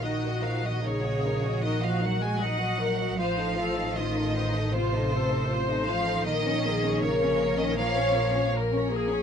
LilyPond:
<<
  \new Staff \with { instrumentName = "Violin section" } { \time 4/4 \key bes \minor \tempo 4 = 78 ees''8 f''16 ees''16 des''4 ees''16 f''16 ges''16 aes''16 ges''4 | f''4 ees''4 c''4. f''8 | ees''4 des''8. ees''16 f''4 r4 | }
  \new Staff \with { instrumentName = "Viola section" } { \time 4/4 \key bes \minor ges'4 aes'4 ges'4 ees''8 bes'8 | c''8 a'8 f'8 ees'8 f'8 a'8 c''4 | bes'8 aes'8 bes'4 des''4 bes'8 aes'8 | }
  \new Staff \with { instrumentName = "Violin section" } { \time 4/4 \key bes \minor <ees' bes'>16 <ges' ees''>16 <ees' bes'>16 <ges' ees''>16 <ees' bes'>16 <ges' ees''>16 <ees' bes'>16 <ges' ees''>16 <ees' bes'>16 <ges' ees''>16 <ees' bes'>16 <ges' ees''>16 <ees' bes'>16 <ges' ees''>16 <ees' bes'>16 <ges' ees''>16 | <f' c''>16 <ees' a'>16 <f' c''>16 <ees' a'>16 <f' c''>16 <ees' a'>16 <f' c''>16 <ees' a'>16 <f' c''>16 <ees' a'>16 <f' c''>16 <ees' a'>16 <f' c''>16 <ees' a'>16 <f' c''>16 <ees' a'>16 | <bes bes'>16 <des' des''>16 <bes bes'>16 <des' des''>16 <bes bes'>16 <des' des''>16 <bes bes'>16 <des' des''>16 <bes bes'>16 <des' des''>16 <bes bes'>16 <des' des''>16 <bes bes'>16 <des' des''>16 <bes bes'>16 <des' des''>16 | }
  \new Staff \with { instrumentName = "Cello section" } { \clef bass \time 4/4 \key bes \minor ees8 f16 ees16 des4 ees16 f16 ges16 aes16 ges4 | f4 ees4 c4. f8 | ees4 des8. ees16 f4 r4 | }
  \new Staff \with { instrumentName = "Double bass section" } { \clef bass \time 4/4 \key bes \minor bes,,1 | a,,1 | bes,,1 | }
>>